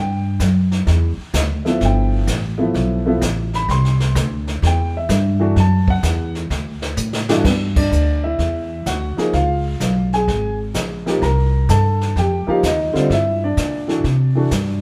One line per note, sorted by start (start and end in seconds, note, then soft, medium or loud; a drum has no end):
0.00 0.38 G2 medium
0.00 0.39 G5 medium
0.40 0.85 F#2 medium
0.40 kick soft
0.40 snare medium
0.40 hi-hat pedal medium
0.71 snare soft
0.87 1.16 E2 medium
0.87 brush sweep soft
0.87 kick soft
0.87 snare soft
1.17 muted upright bass stroke soft
1.34 1.79 D2 medium
1.34 kick soft
1.34 snare medium
1.34 hi-hat pedal medium
1.65 2.24 F3 medium
1.65 2.24 A3 medium
1.65 2.25 B3 medium
1.65 2.25 E4 medium
1.65 1.82 E5 medium
1.65 snare soft
1.81 2.26 G1 medium
1.81 brush sweep soft
1.81 kick soft
1.81 snare soft
1.85 2.27 G5 medium
2.27 2.73 A1 medium
2.27 kick soft
2.27 snare medium
2.27 hi-hat pedal soft
2.58 3.02 F3 medium
2.58 3.02 A3 medium
2.58 3.03 B3 medium
2.58 3.03 E4 medium
2.74 3.20 B1 medium
2.74 brush sweep soft
2.74 kick soft
2.74 snare soft
3.06 3.20 F3 medium
3.06 3.20 A3 medium
3.06 3.20 B3 medium
3.06 3.21 E4 medium
3.21 3.67 A1 medium
3.21 kick soft
3.21 snare medium
3.21 hi-hat pedal medium
3.53 3.69 B5 medium
3.53 snare soft
3.69 4.14 C2 medium
3.69 4.13 C6 medium
3.69 brush sweep soft
3.69 kick soft
3.69 snare soft
3.85 snare soft
4.00 snare soft
4.15 4.61 D2 loud
4.15 kick soft
4.15 snare medium
4.15 hi-hat pedal medium
4.47 snare soft
4.62 5.08 E2 medium
4.62 brush sweep soft
4.62 kick soft
4.62 snare soft
4.67 4.95 G5 medium
4.97 5.54 E5 medium
5.09 5.55 G2 medium
5.09 kick soft
5.09 snare medium
5.09 hi-hat pedal medium
5.40 5.54 E3 medium
5.40 5.54 A3 medium
5.40 5.55 D4 medium
5.40 5.55 F#4 medium
5.56 6.02 F#2 medium
5.56 5.89 A5 medium
5.56 brush sweep soft
5.56 kick soft
5.56 snare soft
5.88 6.33 F#5 loud
5.88 kick medium
6.03 6.49 E2 medium
6.03 kick soft
6.03 snare medium
6.03 hi-hat pedal medium
6.35 snare soft
6.50 6.96 D2 medium
6.50 brush sweep soft
6.50 kick soft
6.50 snare soft
6.82 snare medium
6.97 7.43 A2 medium
6.97 hi-hat pedal medium
7.13 snare medium
7.29 7.43 G2 medium
7.29 7.43 E3 medium
7.29 7.43 A3 medium
7.29 7.43 D4 medium
7.29 7.43 F#4 medium
7.29 snare medium
7.44 7.90 G2 medium
7.44 7.55 B3 medium
7.44 7.52 B4 medium
7.44 brush sweep soft
7.44 kick medium
7.44 snare soft
7.44 crash medium
7.76 8.21 D4 medium
7.76 8.20 D5 medium
7.76 kick medium
7.76 ride medium
7.91 8.37 D2 medium
7.91 hi-hat pedal soft
8.24 8.83 E4 medium
8.24 8.88 E5 medium
8.39 8.84 E2 medium
8.39 brush sweep soft
8.39 kick soft
8.39 snare soft
8.86 9.15 D2 medium
8.86 9.31 F#4 medium
8.86 9.35 F#5 medium
8.86 kick soft
8.86 snare medium
8.86 hi-hat pedal soft
9.17 9.31 F3 medium
9.17 9.31 A#3 medium
9.17 9.32 D#4 medium
9.17 9.32 G#4 medium
9.17 muted upright bass stroke soft
9.17 snare soft
9.33 9.79 C#2 medium
9.33 10.09 F4 medium
9.33 10.08 F5 medium
9.33 brush sweep soft
9.33 kick soft
9.33 snare soft
9.80 10.26 B1 medium
9.80 kick soft
9.80 snare medium
9.80 hi-hat pedal medium
10.13 10.58 G#4 medium
10.13 10.57 G#5 medium
10.13 snare soft
10.28 10.73 G#1 medium
10.28 brush sweep soft
10.28 kick soft
10.28 snare soft
10.74 11.20 A#1 medium
10.74 kick soft
10.74 snare medium
10.74 hi-hat pedal medium
11.06 11.20 F3 medium
11.06 11.20 A#3 medium
11.06 11.21 D#4 medium
11.06 11.21 G4 medium
11.06 snare soft
11.22 11.67 C2 medium
11.22 11.67 A#4 medium
11.22 11.71 A#5 medium
11.22 brush sweep soft
11.22 kick soft
11.22 snare soft
11.69 12.15 G2 medium
11.69 12.13 A4 medium
11.69 12.18 A5 medium
11.69 kick soft
11.69 snare medium
11.69 hi-hat pedal soft
12.01 snare soft
12.16 12.45 F2 medium
12.16 12.47 G4 medium
12.16 12.47 G5 medium
12.16 brush sweep soft
12.16 kick soft
12.16 snare soft
12.47 12.61 F3 medium
12.47 12.62 A#3 medium
12.47 12.62 D#4 medium
12.47 12.63 F4 medium
12.47 12.62 G4 medium
12.47 12.65 F5 medium
12.47 muted upright bass stroke soft
12.63 12.92 D#2 medium
12.63 13.08 D#4 medium
12.63 13.08 D#5 medium
12.63 kick soft
12.63 snare medium
12.63 hi-hat pedal medium
12.94 13.08 D3 medium
12.94 13.08 G3 medium
12.94 13.09 C4 medium
12.94 13.09 F4 medium
12.94 muted upright bass stroke soft
12.94 snare soft
13.10 13.56 G2 medium
13.10 13.41 E4 medium
13.10 13.44 E5 medium
13.10 brush sweep soft
13.10 kick soft
13.10 snare soft
13.44 13.87 D4 medium
13.44 14.80 D5 medium
13.57 14.03 A#2 medium
13.57 kick soft
13.57 snare medium
13.57 hi-hat pedal medium
13.88 14.02 E3 medium
13.88 14.03 A3 medium
13.88 14.03 D4 medium
13.88 14.03 F#4 medium
13.88 snare soft
14.04 14.50 C3 medium
14.04 brush sweep soft
14.04 kick soft
14.04 snare soft
14.35 14.50 E3 medium
14.35 14.50 A3 medium
14.35 14.50 D4 medium
14.35 14.51 F#4 medium
14.51 14.81 G2 medium
14.51 kick soft
14.51 snare medium
14.51 hi-hat pedal medium